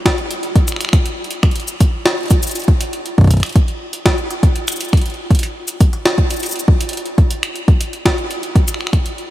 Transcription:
0.06 kick, snare, closed hi-hat
0.18 closed hi-hat
0.31 closed hi-hat
0.43 closed hi-hat
0.56 kick, closed hi-hat
0.68 finger snap, closed hi-hat, cabasa
0.72 finger snap
0.76 finger snap
0.81 finger snap, closed hi-hat
0.85 finger snap
0.89 finger snap
0.93 finger snap, kick, closed hi-hat
1.06 closed hi-hat
1.24 closed hi-hat
1.31 closed hi-hat
1.43 finger snap, kick, closed hi-hat
1.51 closed hi-hat
1.56 closed hi-hat
1.60 closed hi-hat
1.68 closed hi-hat, cabasa
1.80 kick, closed hi-hat
2.06 snare, closed hi-hat
2.18 closed hi-hat
2.21 closed hi-hat
2.23 closed hi-hat
2.26 closed hi-hat
2.28 kick, closed hi-hat
2.31 closed hi-hat, cabasa
2.43 closed hi-hat, cabasa
2.47 closed hi-hat, cabasa
2.51 cabasa
2.56 closed hi-hat, cabasa
2.60 closed hi-hat, cabasa
2.64 cabasa
2.68 kick, closed hi-hat
2.81 closed hi-hat
2.93 closed hi-hat
3.06 closed hi-hat
3.18 kick, closed hi-hat
3.21 kick, closed hi-hat
3.24 kick, closed hi-hat
3.27 kick, closed hi-hat
3.31 kick, closed hi-hat
3.34 kick, closed hi-hat
3.37 kick, closed hi-hat
3.40 finger snap, kick, closed hi-hat
3.43 closed hi-hat
3.46 closed hi-hat
3.49 closed hi-hat
3.53 kick, closed hi-hat
3.56 closed hi-hat
3.68 closed hi-hat
3.93 closed hi-hat
4.06 kick, snare, closed hi-hat
4.18 closed hi-hat
4.31 closed hi-hat
4.43 kick, closed hi-hat
4.56 closed hi-hat
4.68 finger snap, closed hi-hat, cabasa
4.72 cabasa
4.76 cabasa
4.81 closed hi-hat, cabasa
4.85 cabasa
4.89 cabasa
4.93 finger snap, kick, closed hi-hat
4.97 closed hi-hat
5.01 closed hi-hat
5.06 closed hi-hat
5.10 closed hi-hat
5.14 closed hi-hat
5.31 kick, closed hi-hat
5.35 closed hi-hat
5.39 closed hi-hat
5.43 closed hi-hat
5.68 closed hi-hat, cabasa
5.80 kick, closed hi-hat
5.93 closed hi-hat
6.05 snare, closed hi-hat
6.18 kick, closed hi-hat
6.31 closed hi-hat, cabasa
6.34 cabasa
6.37 cabasa
6.40 closed hi-hat, cabasa
6.43 cabasa
6.46 cabasa
6.49 cabasa
6.51 cabasa
6.56 closed hi-hat
6.60 cabasa
6.68 kick
6.81 closed hi-hat
6.89 closed hi-hat
6.93 closed hi-hat
6.97 closed hi-hat
7.06 closed hi-hat
7.18 kick, closed hi-hat
7.31 closed hi-hat
7.43 finger snap, closed hi-hat
7.56 closed hi-hat
7.68 kick, closed hi-hat
7.81 closed hi-hat
7.93 closed hi-hat
8.05 kick, snare, closed hi-hat
8.18 closed hi-hat
8.31 closed hi-hat
8.43 closed hi-hat
8.56 kick, closed hi-hat
8.68 finger snap, closed hi-hat, cabasa
8.74 finger snap
8.81 finger snap
8.87 finger snap
8.93 finger snap, kick, closed hi-hat
9.06 closed hi-hat
9.18 closed hi-hat

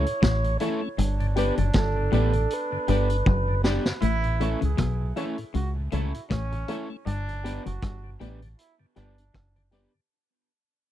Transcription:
Already playing: E4 C#5
0.06 A2, closed hi-hat
0.22 A1 A2, kick, snare, closed hi-hat
0.44 A2, closed hi-hat
0.60 E3 A3 C#4 E4 A4 C#5, closed hi-hat
0.81 A3 C#4
0.98 G1 G2 D4, closed hi-hat
1.20 G2 D3, closed hi-hat
1.36 G3 B3 D4 G4 B4 D5, closed hi-hat
1.57 F#1 F#2 G2 D3, closed hi-hat
1.73 G1 G2 A4, kick, snare, closed hi-hat
1.96 G2 D3
2.12 A1 A2 G3 B3 D4 G4 B4 D5, closed hi-hat
2.33 G2 D3, closed hi-hat
2.50 B4, closed hi-hat
2.72 G2 D3
2.88 G1 G2 G3 B3 D4 G4 B4 D5, closed hi-hat
3.10 B3 D4, closed hi-hat
3.26 F#1 F#2, kick
3.48 G2 D3
3.64 G3 B3 D4 G4 B4 D5, snare
3.85 G2 D3, snare
4.02 A1 A2 E4, closed hi-hat
4.24 A2, closed hi-hat
4.40 E3 A3 C#4 E4 A4 C#5, closed hi-hat
4.61 C#2 A2 C#3 G#4, closed hi-hat
4.77 B1 B2, kick, cross-stick, closed hi-hat
5.01 A2
5.16 E3 A3 C#4 E4 A4 C#5, closed hi-hat
5.38 A2, closed hi-hat
5.54 C#2 C#3 F#4, closed hi-hat
5.77 A2
5.92 C#2 C#3 E3 A3 C#4 E4 A4 C#5, closed hi-hat
6.14 A2, closed hi-hat
6.30 A1 A2 C#4, kick, cross-stick, closed hi-hat
6.52 A2, muted clean electric guitar stroke, closed hi-hat
6.68 E3 A3 C#4 E4 A4 C#5, closed hi-hat
6.90 A3 C#4
7.06 G1 G2 D4, closed hi-hat
7.28 G2 D3, closed hi-hat
7.44 G3 B3 D4 G4 B4 D5, closed hi-hat
7.65 F#1 F#2 G2 D3 F#4, closed hi-hat
7.82 G1 G2, kick, cross-stick, closed hi-hat
8.04 G2 D3
8.20 A1 A2 G3 B3 D4 G4 B4 D5, closed hi-hat
8.42 G2 D3, closed hi-hat
8.58 E4, closed hi-hat
8.80 G2 D3
8.96 G1 G2 G3 B3 D4 G4 B4 D5, cross-stick, closed hi-hat
9.18 B3 D4, closed hi-hat
9.34 F#1 F#2, kick, cross-stick, closed hi-hat
9.56 G2 D3, muted clean electric guitar stroke, closed hi-hat
9.71 G3 B3 D4 G4 B4 D5, closed hi-hat
9.94 G2 D3

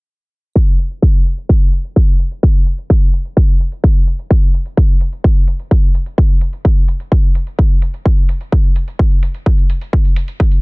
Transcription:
0.55 kick, closed hi-hat
0.79 closed hi-hat
0.91 closed hi-hat
1.02 kick, closed hi-hat
1.26 closed hi-hat
1.38 closed hi-hat
1.49 kick, closed hi-hat
1.73 closed hi-hat
1.84 closed hi-hat
1.96 kick, closed hi-hat
2.20 closed hi-hat
2.31 closed hi-hat
2.43 kick, closed hi-hat
2.66 closed hi-hat
2.78 closed hi-hat
2.90 kick, closed hi-hat
3.13 closed hi-hat
3.25 closed hi-hat
3.37 kick, closed hi-hat
3.49 closed hi-hat
3.60 closed hi-hat
3.72 closed hi-hat
3.84 kick, closed hi-hat
3.96 closed hi-hat
4.07 closed hi-hat
4.19 closed hi-hat
4.30 kick, closed hi-hat
4.42 closed hi-hat
4.54 closed hi-hat
4.66 closed hi-hat
4.77 kick, closed hi-hat
4.89 closed hi-hat
5.01 closed hi-hat
5.13 closed hi-hat
5.24 kick, closed hi-hat
5.48 closed hi-hat
5.59 closed hi-hat
5.71 kick, closed hi-hat
5.83 closed hi-hat
5.94 closed hi-hat
6.06 closed hi-hat
6.18 kick, closed hi-hat
6.30 closed hi-hat
6.41 closed hi-hat
6.53 closed hi-hat
6.65 kick, closed hi-hat
6.77 closed hi-hat
6.88 closed hi-hat
7.00 closed hi-hat
7.12 kick, closed hi-hat
7.23 closed hi-hat
7.35 closed hi-hat
7.47 closed hi-hat
7.59 kick, closed hi-hat
7.70 closed hi-hat
7.82 closed hi-hat
7.94 closed hi-hat
8.05 kick, closed hi-hat
8.17 closed hi-hat
8.29 closed hi-hat
8.41 closed hi-hat
8.52 kick, closed hi-hat
8.64 closed hi-hat
8.76 closed hi-hat
8.88 closed hi-hat
8.99 kick, closed hi-hat
9.11 closed hi-hat
9.23 closed hi-hat
9.34 closed hi-hat
9.46 kick, closed hi-hat
9.58 closed hi-hat
9.70 closed hi-hat
9.81 closed hi-hat
9.93 kick, closed hi-hat
10.05 closed hi-hat
10.16 closed hi-hat
10.28 closed hi-hat
10.40 kick, closed hi-hat
10.52 closed hi-hat

